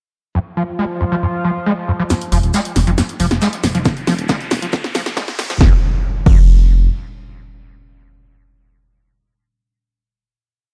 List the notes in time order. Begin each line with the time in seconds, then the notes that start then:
0.35 F2 F3 F4
0.57 F3
0.79 G#3
1.01 F2
1.12 F3
1.23 F2
1.44 F3
1.66 G#3
1.88 F2
2.00 F3
2.10 F2, snare, closed hi-hat, riser, shaker
2.21 closed hi-hat
2.32 F1 F3, open hi-hat, shaker
2.43 D#1, closed hi-hat
2.54 G#3, snare, closed hi-hat, shaker
2.65 closed hi-hat
2.76 F1 F2, snare, open hi-hat, shaker
2.87 F1 F3, closed hi-hat
2.98 F2, snare, closed hi-hat, shaker
3.09 closed hi-hat
3.20 F1 F3, open hi-hat, shaker
3.31 F1, snare, closed hi-hat
3.41 G#3, snare, closed hi-hat, shaker
3.53 snare, closed hi-hat
3.63 F1 F2, snare, open hi-hat, shaker
3.75 F1 F3, closed hi-hat
3.85 F2, kick, snare, closed hi-hat, shaker
3.97 closed hi-hat
4.07 F1 F3, snare, open hi-hat, shaker
4.19 D#1, closed hi-hat
4.29 G#3, kick, snare, closed hi-hat, shaker
4.40 snare, closed hi-hat
4.51 F1 F2, snare, open hi-hat, shaker
4.62 F1 F3, closed hi-hat
4.73 F2, kick, snare, closed hi-hat, shaker
4.84 snare, closed hi-hat
4.94 F1 F3, snare, open hi-hat, shaker
5.06 F1, snare, closed hi-hat
5.16 G#3, kick, snare, closed hi-hat, shaker
5.28 snare, closed hi-hat
5.39 F1 F2, snare, open hi-hat, shaker
5.50 F1 F3, snare, closed hi-hat
5.61 F1 F2, kick, snare, impact
6.26 F1 F2, kick, crash